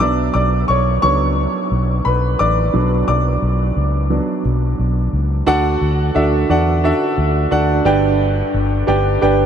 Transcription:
0.00 fingered electric bass B1, upright piano F#3 B3 D4 D5 D6
0.34 fingered electric bass B1, upright piano D5 D6
0.68 fingered electric bass B1, upright piano C#5 C#6
1.02 fingered electric bass C#2, upright piano F#3 B3 D4 C#5 C#6
1.72 fingered electric bass B1
2.05 fingered electric bass B1, upright piano B4 B5
2.39 fingered electric bass A1, upright piano D5 D6
2.74 fingered electric bass B1, upright piano F#3 B3 D4
3.08 fingered electric bass B1, upright piano D5 D6
3.42 fingered electric bass B1
3.76 fingered electric bass C#2
4.10 upright piano F#3 B3 D4
4.45 fingered electric bass B1
4.79 fingered electric bass B1
5.13 fingered electric bass C#2
5.46 fingered electric bass D2, upright piano D3 D4 F#4 A4 D5 F#5
5.81 fingered electric bass D2
6.15 fingered electric bass D2, upright piano D4 F#4 A4 D5 E5
6.49 fingered electric bass E2, upright piano D4 F#4 A4 D5 F#5
6.84 upright piano D4 F#4 A4 D5 E5
7.18 fingered electric bass D2
7.51 fingered electric bass D2, upright piano D4 F#4 A4 D5 F#5
7.85 fingered electric bass G1, upright piano G2 D4 G4 B4 D5 G5
8.54 fingered electric bass G1
8.87 fingered electric bass G1, upright piano D4 G4 B4 D5 G5
9.21 fingered electric bass G1, upright piano D4 G4 B4 D5 G5

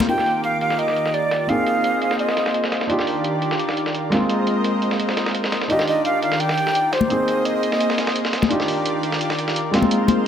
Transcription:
Already playing: grand piano A#3 C4 F4 G#4 C5
0.00 snare, closed hi-hat, high conga
0.07 analog synth pad D#3 F4 G4 A#4 D6, grand piano A#3 D#4 F4 G4, flute G5, closed hi-hat
0.18 snare
0.26 open hi-hat
0.44 flute F5, closed hi-hat
0.61 flute F5, closed hi-hat
0.70 snare
0.79 flute D#5, closed hi-hat
0.88 snare
0.96 closed hi-hat
1.06 snare
1.14 flute D5, closed hi-hat
1.31 snare, closed hi-hat
1.47 grand piano A#3 C4 D#4 G#4, analog synth pad A#3 G#4 C5 D#5, flute F5, closed hi-hat
1.67 closed hi-hat
1.84 closed hi-hat
2.02 closed hi-hat
2.11 snare
2.19 flute D#5, closed hi-hat
2.29 snare
2.37 snare, closed hi-hat
2.46 snare
2.54 closed hi-hat
2.64 snare
2.72 snare, closed hi-hat
2.81 snare
2.87 analog synth pad D#3 G4 A#4 D5, grand piano D4 D#4 F4 G4, closed hi-hat
2.99 snare
3.07 open hi-hat
3.24 closed hi-hat
3.42 closed hi-hat
3.51 snare
3.59 closed hi-hat
3.69 snare
3.77 closed hi-hat
3.86 snare
3.95 closed hi-hat
4.10 grand piano G#3 A#3 C4 F4, analog synth pad G#3 C5 D#5, snare, closed hi-hat
4.29 closed hi-hat
4.47 closed hi-hat
4.64 closed hi-hat
4.82 closed hi-hat
4.91 snare
5.00 closed hi-hat
5.09 snare
5.17 snare, closed hi-hat
5.26 snare
5.35 closed hi-hat
5.44 snare
5.52 snare, closed hi-hat
5.62 snare
5.68 analog synth pad D#3 G4 D5, grand piano D4 D#4 F4 G4, flute D#5, closed hi-hat
5.79 snare
5.87 flute D#5, open hi-hat
6.05 flute F5, closed hi-hat
6.23 flute F5, closed hi-hat
6.32 snare
6.40 flute G5, closed hi-hat
6.49 snare
6.58 closed hi-hat
6.67 snare
6.75 closed hi-hat
6.93 flute C5, snare, closed hi-hat
7.01 high conga
7.08 grand piano A#3 C4 D#4 G#4, analog synth pad A#3 G#4 C5 D#5, closed hi-hat
7.28 closed hi-hat
7.45 flute D#5, closed hi-hat
7.63 closed hi-hat
7.72 snare
7.80 closed hi-hat
7.90 snare
7.98 snare, closed hi-hat
8.07 snare
8.16 closed hi-hat
8.25 snare
8.33 snare, closed hi-hat
8.42 snare, high conga
8.49 analog synth pad D#3 F4 G4 A#4 D5, grand piano D4 D#4 F4 G4, closed hi-hat
8.60 snare
8.68 open hi-hat
8.86 closed hi-hat
9.03 closed hi-hat
9.12 snare
9.21 closed hi-hat
9.30 snare
9.39 closed hi-hat
9.48 snare
9.56 closed hi-hat
9.71 grand piano G#3 A#3 C4 F4, analog synth pad G#3 D#4 F4 C5, snare, closed hi-hat
9.82 high conga
9.91 closed hi-hat
10.08 closed hi-hat, high conga

